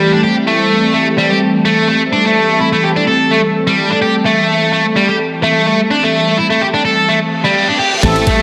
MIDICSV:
0, 0, Header, 1, 8, 480
1, 0, Start_track
1, 0, Key_signature, 0, "minor"
1, 0, Tempo, 472441
1, 481, Time_signature, 4, 2, 24, 8
1, 8557, End_track
2, 0, Start_track
2, 0, Title_t, "Brass ensemble"
2, 0, Program_c, 0, 61
2, 8159, Note_on_c, 0, 60, 96
2, 8159, Note_on_c, 0, 64, 91
2, 8159, Note_on_c, 0, 69, 110
2, 8160, Note_on_c, 0, 67, 83
2, 8365, Note_off_c, 0, 60, 0
2, 8365, Note_off_c, 0, 69, 0
2, 8366, Note_off_c, 0, 64, 0
2, 8366, Note_off_c, 0, 67, 0
2, 8557, End_track
3, 0, Start_track
3, 0, Title_t, "Analog synth pad"
3, 0, Program_c, 1, 89
3, 0, Note_on_c, 1, 52, 70
3, 0, Note_on_c, 1, 55, 66
3, 0, Note_on_c, 1, 57, 67
3, 0, Note_on_c, 1, 60, 69
3, 0, Note_on_c, 1, 67, 84
3, 438, Note_off_c, 1, 67, 0
3, 474, Note_on_c, 1, 69, 83
3, 7636, Note_off_c, 1, 69, 0
3, 7637, Note_off_c, 1, 57, 0
3, 7638, Note_off_c, 1, 52, 0
3, 7638, Note_off_c, 1, 55, 0
3, 7638, Note_off_c, 1, 60, 0
3, 8159, Note_on_c, 1, 55, 71
3, 8159, Note_on_c, 1, 57, 73
3, 8159, Note_on_c, 1, 60, 74
3, 8160, Note_on_c, 1, 52, 82
3, 8161, Note_on_c, 1, 67, 92
3, 8557, Note_off_c, 1, 52, 0
3, 8557, Note_off_c, 1, 55, 0
3, 8557, Note_off_c, 1, 57, 0
3, 8557, Note_off_c, 1, 60, 0
3, 8557, Note_off_c, 1, 67, 0
3, 8557, End_track
4, 0, Start_track
4, 0, Title_t, "Overdriven electric guitar"
4, 0, Program_c, 2, 29
4, 0, Note_on_c, 2, 55, 90
4, 115, Note_off_c, 2, 55, 0
4, 127, Note_on_c, 2, 62, 68
4, 205, Note_off_c, 2, 62, 0
4, 238, Note_on_c, 2, 67, 90
4, 360, Note_off_c, 2, 67, 0
4, 479, Note_on_c, 2, 57, 74
4, 946, Note_off_c, 2, 57, 0
4, 958, Note_on_c, 2, 57, 87
4, 1080, Note_off_c, 2, 57, 0
4, 1200, Note_on_c, 2, 55, 86
4, 1321, Note_off_c, 2, 55, 0
4, 1325, Note_on_c, 2, 67, 68
4, 1404, Note_off_c, 2, 67, 0
4, 1677, Note_on_c, 2, 57, 88
4, 1907, Note_off_c, 2, 57, 0
4, 1919, Note_on_c, 2, 57, 94
4, 2040, Note_off_c, 2, 57, 0
4, 2159, Note_on_c, 2, 62, 95
4, 2281, Note_off_c, 2, 62, 0
4, 2286, Note_on_c, 2, 57, 66
4, 2628, Note_off_c, 2, 57, 0
4, 2640, Note_on_c, 2, 64, 67
4, 2728, Note_off_c, 2, 64, 0
4, 2769, Note_on_c, 2, 57, 91
4, 2875, Note_off_c, 2, 57, 0
4, 2882, Note_on_c, 2, 67, 76
4, 2934, Note_off_c, 2, 67, 0
4, 3010, Note_on_c, 2, 62, 67
4, 3087, Note_off_c, 2, 62, 0
4, 3122, Note_on_c, 2, 69, 87
4, 3350, Note_off_c, 2, 69, 0
4, 3363, Note_on_c, 2, 57, 93
4, 3450, Note_off_c, 2, 57, 0
4, 3730, Note_on_c, 2, 55, 93
4, 3956, Note_off_c, 2, 55, 0
4, 3970, Note_on_c, 2, 62, 71
4, 4046, Note_off_c, 2, 62, 0
4, 4082, Note_on_c, 2, 67, 95
4, 4202, Note_off_c, 2, 67, 0
4, 4324, Note_on_c, 2, 57, 71
4, 4791, Note_off_c, 2, 57, 0
4, 4802, Note_on_c, 2, 57, 88
4, 4922, Note_off_c, 2, 57, 0
4, 5042, Note_on_c, 2, 55, 86
4, 5162, Note_off_c, 2, 55, 0
4, 5168, Note_on_c, 2, 67, 69
4, 5246, Note_off_c, 2, 67, 0
4, 5522, Note_on_c, 2, 57, 94
4, 5750, Note_off_c, 2, 57, 0
4, 5762, Note_on_c, 2, 57, 93
4, 5882, Note_off_c, 2, 57, 0
4, 6000, Note_on_c, 2, 62, 91
4, 6122, Note_off_c, 2, 62, 0
4, 6127, Note_on_c, 2, 57, 68
4, 6468, Note_off_c, 2, 57, 0
4, 6477, Note_on_c, 2, 64, 72
4, 6567, Note_off_c, 2, 64, 0
4, 6605, Note_on_c, 2, 57, 96
4, 6713, Note_off_c, 2, 57, 0
4, 6718, Note_on_c, 2, 67, 75
4, 6772, Note_off_c, 2, 67, 0
4, 6848, Note_on_c, 2, 62, 68
4, 6926, Note_off_c, 2, 62, 0
4, 6960, Note_on_c, 2, 69, 93
4, 7189, Note_off_c, 2, 69, 0
4, 7202, Note_on_c, 2, 57, 94
4, 7289, Note_off_c, 2, 57, 0
4, 7568, Note_on_c, 2, 55, 90
4, 7795, Note_off_c, 2, 55, 0
4, 7806, Note_on_c, 2, 62, 71
4, 7885, Note_off_c, 2, 62, 0
4, 7919, Note_on_c, 2, 67, 92
4, 8041, Note_off_c, 2, 67, 0
4, 8160, Note_on_c, 2, 57, 79
4, 8557, Note_off_c, 2, 57, 0
4, 8557, End_track
5, 0, Start_track
5, 0, Title_t, "Detuned saw bass"
5, 0, Program_c, 3, 39
5, 8160, Note_on_c, 3, 33, 103
5, 8244, Note_off_c, 3, 33, 0
5, 8557, End_track
6, 0, Start_track
6, 0, Title_t, "Downlifter"
6, 0, Program_c, 4, 103
6, 8161, Note_on_c, 4, 60, 79
6, 8557, Note_off_c, 4, 60, 0
6, 8557, End_track
7, 0, Start_track
7, 0, Title_t, "Reverse cymbal"
7, 0, Program_c, 5, 119
7, 7200, Note_on_c, 5, 60, 64
7, 8160, Note_off_c, 5, 60, 0
7, 8557, End_track
8, 0, Start_track
8, 0, Title_t, "Drums"
8, 8160, Note_on_c, 9, 36, 115
8, 8161, Note_on_c, 9, 51, 93
8, 8262, Note_off_c, 9, 36, 0
8, 8262, Note_off_c, 9, 51, 0
8, 8288, Note_on_c, 9, 51, 46
8, 8390, Note_off_c, 9, 51, 0
8, 8401, Note_on_c, 9, 36, 94
8, 8401, Note_on_c, 9, 51, 63
8, 8502, Note_off_c, 9, 36, 0
8, 8502, Note_off_c, 9, 51, 0
8, 8557, End_track
0, 0, End_of_file